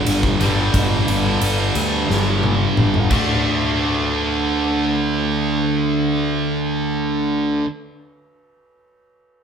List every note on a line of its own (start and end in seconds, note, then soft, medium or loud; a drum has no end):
0.00 0.37 G2 medium
0.00 0.38 D3 loud
0.00 0.39 G3 medium
0.06 0.35 G1 medium
0.06 ride medium
0.23 kick medium
0.39 0.68 G1 medium
0.39 3.08 G2 medium
0.39 3.08 D3 medium
0.39 3.09 G3 loud
0.39 snare soft
0.39 ride medium
0.74 1.02 G1 medium
0.74 kick loud
0.74 ride medium
1.08 1.36 G1 medium
1.08 ride medium
1.41 1.69 G1 medium
1.41 ride medium
1.75 2.03 D2 medium
1.75 ride medium
2.10 2.65 G1 medium
2.10 snare medium
2.43 high tom medium
2.77 3.05 G1 medium
2.77 mid tom medium
2.94 mid tom medium
3.09 7.62 D2 medium
3.09 7.65 D3 medium
3.09 7.66 A3 medium
3.09 7.67 D4 loud
3.09 kick loud
3.09 crash medium